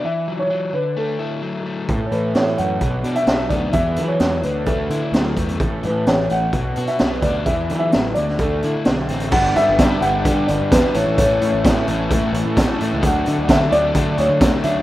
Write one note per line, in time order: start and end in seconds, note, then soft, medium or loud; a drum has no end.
0.04 0.73 E3 medium
0.04 0.41 E5 medium
0.28 0.49 F#3 medium
0.39 0.72 C#5 loud
0.50 0.74 F#3 medium
0.73 1.89 D3 medium
0.73 0.96 B4 medium
0.97 1.64 A3 medium
0.97 1.63 A4 medium
1.19 1.89 E4 medium
1.42 1.89 F#3 medium
1.66 1.89 A3 medium
1.89 2.00 A2 medium
1.89 2.81 A2 medium
1.89 2.82 E3 medium
1.89 2.83 A3 medium
1.89 2.83 C#4 medium
1.89 2.84 A4 medium
1.89 kick loud
1.89 closed hi-hat medium
2.06 2.12 C#5 medium
2.11 2.33 A2 medium
2.11 2.34 E3 medium
2.11 2.34 B4 medium
2.11 closed hi-hat soft
2.34 2.56 A2 medium
2.34 2.82 E3 medium
2.34 2.57 C#5 medium
2.34 snare loud
2.34 closed hi-hat soft
2.58 2.80 F#2 medium
2.58 2.83 A3 medium
2.58 3.12 F#5 medium
2.58 closed hi-hat medium
2.81 3.02 B1 medium
2.81 3.74 B2 medium
2.81 3.75 F#3 medium
2.81 3.76 B3 medium
2.81 3.76 D4 medium
2.81 kick medium
2.81 closed hi-hat medium
2.85 3.76 F#4 medium
3.04 3.15 B2 medium
3.04 3.75 D4 medium
3.04 closed hi-hat medium
3.15 3.52 E5 loud
3.15 closed hi-hat medium
3.27 3.48 B1 medium
3.27 3.75 F#3 medium
3.27 snare loud
3.27 closed hi-hat medium
3.50 3.71 D2 medium
3.50 3.75 B3 medium
3.50 3.72 D5 medium
3.50 kick medium
3.50 closed hi-hat medium
3.73 3.99 E2 medium
3.73 4.44 E2 medium
3.73 4.45 B2 medium
3.73 4.43 E3 medium
3.73 4.44 G#3 medium
3.73 4.10 E5 loud
3.73 kick loud
3.73 closed hi-hat medium
3.77 4.45 B3 medium
3.77 4.46 G#4 medium
3.96 4.18 E3 medium
3.96 4.20 F#3 medium
3.96 closed hi-hat medium
4.08 4.45 C#5 medium
4.20 4.41 E2 medium
4.20 4.45 F#3 medium
4.20 snare loud
4.20 closed hi-hat medium
4.43 4.64 D2 medium
4.43 5.60 D3 medium
4.43 5.60 A3 medium
4.43 5.61 D4 medium
4.43 5.62 F#4 medium
4.43 4.68 B4 medium
4.43 closed hi-hat medium
4.66 4.88 D2 medium
4.66 5.36 A3 medium
4.66 5.33 A4 medium
4.66 kick loud
4.66 closed hi-hat medium
4.90 5.01 D3 loud
4.90 5.61 E4 medium
4.90 closed hi-hat medium
5.12 5.34 D2 medium
5.12 5.61 F#3 medium
5.12 snare loud
5.12 closed hi-hat medium
5.37 5.58 E2 medium
5.37 5.61 A3 medium
5.37 kick medium
5.37 closed hi-hat medium
5.49 closed hi-hat medium
5.60 5.86 A1 medium
5.60 6.52 A2 medium
5.60 6.53 E3 medium
5.60 6.54 A3 medium
5.60 6.54 C#4 medium
5.60 6.55 A4 medium
5.60 kick loud
5.60 closed hi-hat medium
5.83 6.05 A2 medium
5.83 6.06 E3 medium
5.83 6.09 B4 medium
5.83 closed hi-hat soft
6.06 6.28 A1 medium
6.06 6.53 E3 medium
6.06 6.29 C#5 medium
6.06 snare loud
6.06 closed hi-hat medium
6.30 6.51 A1 medium
6.30 6.54 A3 medium
6.30 6.91 F#5 loud
6.30 closed hi-hat medium
6.53 6.74 B1 medium
6.53 7.47 B2 medium
6.53 7.48 F#3 medium
6.53 7.48 B3 medium
6.53 7.48 D4 medium
6.53 7.49 F#4 medium
6.53 kick medium
6.53 closed hi-hat medium
6.76 6.88 B2 loud
6.76 7.51 F#4 medium
6.76 closed hi-hat medium
6.87 7.21 E5 medium
6.87 closed hi-hat medium
6.99 7.21 B1 medium
6.99 7.47 B3 medium
6.99 snare loud
6.99 closed hi-hat medium
7.22 7.43 D2 medium
7.22 7.48 D4 medium
7.22 7.45 D5 medium
7.22 kick medium
7.22 closed hi-hat medium
7.46 7.72 E2 medium
7.46 8.17 E2 medium
7.46 8.17 B2 medium
7.46 8.15 E3 medium
7.46 8.16 G#3 medium
7.46 8.17 B3 medium
7.46 8.18 G#4 medium
7.46 7.78 E5 medium
7.46 kick loud
7.46 closed hi-hat medium
7.69 7.91 E3 medium
7.69 7.93 F#3 medium
7.69 closed hi-hat medium
7.79 8.13 E5 loud
7.92 8.15 A1 medium
7.92 8.17 F#3 medium
7.92 snare loud
7.92 closed hi-hat medium
8.14 8.38 D2 medium
8.14 8.84 D3 medium
8.14 8.86 A3 medium
8.14 8.87 D4 medium
8.14 8.37 D5 medium
8.14 closed hi-hat medium
8.19 8.88 F#4 medium
8.28 snare soft
8.38 8.60 D2 medium
8.38 8.87 A3 medium
8.38 9.05 A4 medium
8.38 kick loud
8.38 closed hi-hat medium
8.63 8.74 D3 medium
8.63 8.87 E4 medium
8.63 closed hi-hat medium
8.85 9.08 B1 medium
8.85 9.32 D3 medium
8.85 9.33 A3 medium
8.85 9.34 C4 medium
8.85 snare loud
8.85 closed hi-hat medium
8.89 9.34 F#4 medium
9.09 9.31 A1 medium
9.09 9.33 C4 medium
9.09 closed hi-hat medium
9.20 closed hi-hat medium
9.31 9.53 G1 loud
9.31 9.78 G2 medium
9.31 9.79 D3 loud
9.31 9.79 G3 medium
9.31 9.80 B3 loud
9.31 9.80 D4 loud
9.31 10.94 G4 medium
9.31 9.54 F#5 loud
9.31 13.00 F#5 medium
9.31 10.94 B5 medium
9.31 kick loud
9.31 crash loud
9.35 9.81 G4 loud
9.56 9.67 G2 medium
9.56 10.04 E5 loud
9.56 closed hi-hat medium
9.69 9.78 G1 loud
9.79 9.99 G2 medium
9.79 10.01 G2 medium
9.79 10.01 D3 medium
9.79 10.02 G3 medium
9.79 10.02 B3 medium
9.79 10.03 D4 medium
9.79 10.03 G4 medium
9.79 kick loud
9.79 snare loud
9.79 closed hi-hat loud
10.01 10.23 G1 medium
10.01 10.24 G2 medium
10.01 10.24 D3 medium
10.01 10.25 G3 medium
10.01 10.26 B3 medium
10.01 10.26 D4 medium
10.01 10.26 G4 medium
10.01 10.49 F#5 loud
10.01 closed hi-hat medium
10.25 10.45 G2 medium
10.25 10.71 G2 medium
10.25 10.71 D3 medium
10.25 10.72 G3 medium
10.25 10.73 B3 medium
10.25 10.73 D4 medium
10.25 10.73 G4 medium
10.25 kick loud
10.25 closed hi-hat medium
10.47 10.59 G1 loud
10.47 10.72 D5 medium
10.47 closed hi-hat medium
10.61 10.71 G2 loud
10.71 10.82 E2 medium
10.71 10.94 G2 medium
10.71 10.94 D3 medium
10.71 10.94 G3 medium
10.71 10.95 B3 medium
10.71 10.95 D4 medium
10.71 10.95 G4 medium
10.71 10.95 B4 medium
10.71 kick loud
10.71 snare loud
10.71 closed hi-hat loud
10.94 11.05 A1 medium
10.94 11.17 A2 loud
10.94 11.18 E3 loud
10.94 11.20 A3 loud
10.94 11.20 C#4 loud
10.94 11.19 E4 loud
10.94 13.01 A4 medium
10.94 11.20 A4 loud
10.94 11.16 C#5 medium
10.94 14.82 C#6 medium
10.94 closed hi-hat medium
11.07 11.17 A1 medium
11.17 11.39 A1 medium
11.17 11.63 A2 medium
11.17 11.64 E3 medium
11.17 11.65 A3 loud
11.17 11.66 C#4 loud
11.17 11.65 E4 loud
11.17 11.66 A4 loud
11.17 11.61 C#5 medium
11.17 kick loud
11.17 closed hi-hat loud
11.41 11.52 A2 medium
11.41 closed hi-hat medium
11.53 11.63 A1 loud
11.64 11.86 A2 medium
11.64 11.85 A2 medium
11.64 11.87 E3 medium
11.64 11.88 A3 medium
11.64 11.89 C#4 medium
11.64 11.89 E4 loud
11.64 11.89 A4 medium
11.64 kick loud
11.64 snare loud
11.64 closed hi-hat loud
11.88 12.08 A1 loud
11.88 12.09 A2 medium
11.88 12.10 E3 medium
11.88 12.11 A3 medium
11.88 12.12 C#4 medium
11.88 12.11 E4 medium
11.88 12.13 A4 medium
11.88 closed hi-hat medium
12.10 12.55 A2 medium
12.10 12.31 A2 medium
12.10 12.56 E3 medium
12.10 12.57 A3 medium
12.10 12.58 C#4 medium
12.10 12.57 E4 loud
12.10 12.58 A4 loud
12.10 kick loud
12.10 closed hi-hat loud
12.33 12.43 A1 loud
12.33 closed hi-hat medium
12.46 12.56 A2 loud
12.56 12.67 A1 medium
12.56 12.78 A2 medium
12.56 12.79 E3 medium
12.56 12.80 A3 medium
12.56 12.81 C#4 medium
12.56 12.79 E4 loud
12.56 12.81 A4 medium
12.56 kick loud
12.56 snare loud
12.56 closed hi-hat loud
12.79 13.01 A2 loud
12.79 12.91 A2 medium
12.79 13.02 E3 medium
12.79 13.03 A3 medium
12.79 13.04 C#4 medium
12.79 13.02 E4 loud
12.79 13.04 A4 medium
12.79 closed hi-hat medium
12.93 13.02 C#2 medium
13.01 13.23 D2 loud
13.01 13.48 D3 loud
13.01 13.48 F#3 loud
13.01 13.49 A3 medium
13.01 13.50 D4 loud
13.01 14.82 D4 medium
13.01 13.50 F#4 loud
13.01 14.82 F#4 medium
13.01 13.52 F#5 medium
13.01 kick loud
13.01 closed hi-hat loud
13.26 13.37 D3 loud
13.26 closed hi-hat medium
13.39 13.48 D2 medium
13.49 13.71 D3 medium
13.49 13.69 D3 medium
13.49 13.71 F#3 medium
13.49 13.72 A3 medium
13.49 13.72 D4 medium
13.49 13.73 F#4 loud
13.49 13.71 E5 medium
13.49 kick loud
13.49 snare loud
13.49 closed hi-hat medium
13.71 13.92 D2 loud
13.71 13.93 D3 medium
13.71 13.93 F#3 medium
13.71 13.94 A3 medium
13.71 13.95 D4 medium
13.71 13.96 F#4 medium
13.71 14.20 D5 loud
13.71 closed hi-hat medium
13.94 14.39 D3 medium
13.94 14.15 D3 medium
13.94 14.41 F#3 medium
13.94 14.40 A3 loud
13.94 14.42 D4 loud
13.94 14.42 F#4 loud
13.94 kick loud
13.94 closed hi-hat medium
14.18 14.28 D2 loud
14.18 14.66 C#5 medium
14.18 closed hi-hat medium
14.29 14.40 D3 medium
14.41 14.51 D2 medium
14.41 14.63 D3 medium
14.41 14.64 F#3 medium
14.41 14.63 A3 medium
14.41 14.64 D4 medium
14.41 14.65 F#4 loud
14.41 kick loud
14.41 snare loud
14.41 closed hi-hat loud
14.63 14.82 D3 medium
14.63 14.74 D3 medium
14.63 14.82 F#3 loud
14.63 14.82 A3 medium
14.63 14.82 D4 medium
14.63 14.82 F#4 medium
14.63 14.82 E5 medium
14.63 closed hi-hat medium
14.76 14.82 D2 medium